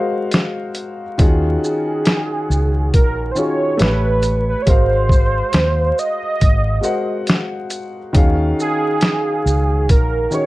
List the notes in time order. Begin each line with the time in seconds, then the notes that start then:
Already playing: G#3 F#4 A#4 C5 D#5 F5
0.32 snare, closed hi-hat
0.75 closed hi-hat
1.18 D#2 D#3 C#4 F4 F#4 G#4, kick, closed hi-hat
1.64 G#4, shaker
2.06 snare, closed hi-hat
2.50 C#2, shaker
2.94 A#1 A#4, kick, closed hi-hat
3.31 D#3 C5
3.36 C#4 F4 F#4 G#4 C#5, shaker
3.77 A1 A3 G4 B4 C#5, closed hi-hat
3.82 snare
4.23 closed hi-hat, shaker
4.49 B4
4.62 C#5
4.66 G#1 G#3 F#4 A#4 C5 F5, kick, closed hi-hat
5.09 kick, shaker
5.53 D#2, snare, closed hi-hat
5.98 D#5, shaker
6.41 G#1, kick, closed hi-hat
6.81 G#3 F#4 A#4 C5 F#5, shaker
7.27 snare, closed hi-hat
7.70 closed hi-hat, shaker
8.13 D#2 D#3 C#4 F#4 G#4 F5, kick, closed hi-hat
8.60 G#4, shaker
9.01 snare, closed hi-hat
9.46 C#2, shaker
9.89 A#1 A#4, kick, closed hi-hat
10.31 D#3 C#4 F#4 G#4 C#5, shaker